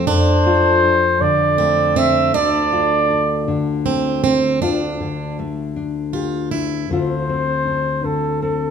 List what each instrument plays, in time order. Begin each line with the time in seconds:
Already playing: french horn section F2 A4, nylon-string guitar F3 A3
0.07 nylon-string guitar F2, french horn section F3 D4, steel-string acoustic guitar D4, flugelhorn C5
0.46 nylon-string guitar F4
0.83 nylon-string guitar D4
1.21 nylon-string guitar D3, flugelhorn D5
1.58 nylon-string guitar A3, steel-string acoustic guitar C4
1.96 steel-string acoustic guitar C4, flugelhorn E5
2.34 french horn section D2 D3 F4 A4, nylon-string guitar D2, steel-string acoustic guitar D4, flugelhorn D5
2.72 nylon-string guitar F4
3.10 nylon-string guitar D4
3.48 nylon-string guitar D3
3.86 nylon-string guitar A3, steel-string acoustic guitar C4
4.24 steel-string acoustic guitar C4
4.62 nylon-string guitar D2 F4, steel-string acoustic guitar D4
5.00 nylon-string guitar D3
5.39 nylon-string guitar A3
5.76 nylon-string guitar D4
6.13 steel-string acoustic guitar F4, nylon-string guitar G4
6.51 nylon-string guitar D4, steel-string acoustic guitar E4
6.90 nylon-string guitar D2 D3 C4 D4 F4, flugelhorn C5
7.29 nylon-string guitar C4
7.67 nylon-string guitar D4
8.04 nylon-string guitar D3, flugelhorn A4
8.42 nylon-string guitar C4, flugelhorn A4